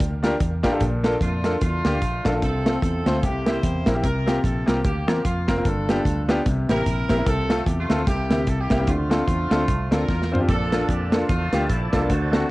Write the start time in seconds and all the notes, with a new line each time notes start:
0.00 D2, kick, closed hi-hat
0.23 D4 F4 G4 A#4, snare, closed hi-hat
0.40 E2, kick, closed hi-hat
0.63 A1 D4 F4 G4 A#4, kick, snare, closed hi-hat
0.72 D4 F4 G4 A4
0.80 A#1 A#2, kick, closed hi-hat
1.04 A#3 D4 F4 A4, snare, closed hi-hat
1.21 F2 A3 D4 F4, kick, closed hi-hat
1.44 A#3 D4 F4 A4, snare, closed hi-hat
1.61 E2 A3 D4 F4, kick, closed hi-hat
1.85 D2 A#3 D4 F4 G4, snare, closed hi-hat
2.02 A#1, kick, closed hi-hat
2.25 A#1 A#3 D4 F4 A4, kick, snare, closed hi-hat
2.33 A#3 D4 F4 A4
2.42 C2 C3 C4 F4 A4, kick, closed hi-hat
2.65 A3 C4 F4 A4, snare, closed hi-hat
2.82 E2 C4 F4 A4, kick, closed hi-hat
3.06 D2 A3 C4 F4 C5, snare, closed hi-hat
3.23 C2 C3 A#3 E4 G4, kick, closed hi-hat
3.45 A#3 C4 E4 G4 C5, snare, closed hi-hat
3.63 E2, kick, closed hi-hat
3.86 A#1 A#3 C4 E4 A#4, kick, snare, closed hi-hat
3.94 A#3 C4 E4 G4
4.03 C2 C3 F4 G4 A#4, kick, closed hi-hat
4.26 A#3 C4 F4 G4, snare, closed hi-hat
4.43 A#1 A4, kick, closed hi-hat
4.66 C2 A#3 C4 F4 G4 A#4, snare, closed hi-hat
4.84 D2 A#3 G4, kick, closed hi-hat
5.07 E2 A#3 C4 F4 A#4, snare, closed hi-hat
5.24 F2 A#3 F4, kick, closed hi-hat
5.47 F1 A#3 C4 F4 A#4, kick, snare, closed hi-hat
5.57 A#3 C4 F4 A#4
5.64 G1 G2 D4 F4 A4, kick, closed hi-hat
5.89 B3 D4 F4 G4, snare, closed hi-hat
6.05 D2, kick, closed hi-hat
6.28 B3 D4 F4 G4, snare, closed hi-hat
6.46 C2 C3, kick, closed hi-hat
6.68 A1 A#3 C4 E4 G4 A#4, snare, closed hi-hat
6.86 A#1, kick, closed hi-hat
7.08 A#1 A#3 C4 E4 G4, kick, snare, closed hi-hat
7.17 A#3 C4 E4 A#4
7.26 C2 C3 C4 F4 A4, kick, closed hi-hat
7.49 A3 C4 F4 A4, snare, closed hi-hat
7.66 E2 G4, kick, closed hi-hat
7.79 A3 C4 F4
7.89 D2 A3 C4 F4 A4, snare, closed hi-hat
8.07 C2 C3 A#3 E4 G4, kick, closed hi-hat
8.30 D2 A#3 C4 E4 G4, snare, closed hi-hat
8.47 C2 A4, kick, closed hi-hat
8.59 A#3 E4 G4
8.70 C2 A#3 C4 E4 G4, kick, snare, closed hi-hat
8.79 A#3 C4 E4 G4
8.87 D2 D3 A3 C4 F4, kick, closed hi-hat
9.10 C4 D4 F4 A4, snare, closed hi-hat
9.28 E2, kick, closed hi-hat
9.50 D2 C4 D4 F4 A4, snare, closed hi-hat
9.68 C2, kick, closed hi-hat
9.91 D2 C4 D4 F4 A4 A#4, snare, closed hi-hat
10.08 E2, kick, snare
10.22 snare
10.32 C4 D4 F4 C5, floor tom
10.39 C4 D4 F4 G4
10.48 A#1 A#2 F3 D4 F4 A4 D5 A5, kick, closed hi-hat
10.72 A#3 D4 F4 A4, snare, closed hi-hat
10.89 F2 G4, kick, closed hi-hat
11.12 A#3 D4 F4 A4, snare, closed hi-hat
11.29 E2 A3 D4 F4, kick, closed hi-hat
11.52 D2 A#3 D4 F4 G4, snare, closed hi-hat
11.69 A#1 A3 E4, kick, closed hi-hat
11.92 C2 A#3 D4 F4 A4, kick, snare, closed hi-hat
12.00 A#3 D4 F4 A4
12.09 D2 D3 A3 C4 F#4 C5 A5, kick, closed hi-hat
12.32 C4 D4 F#4 A4, snare, closed hi-hat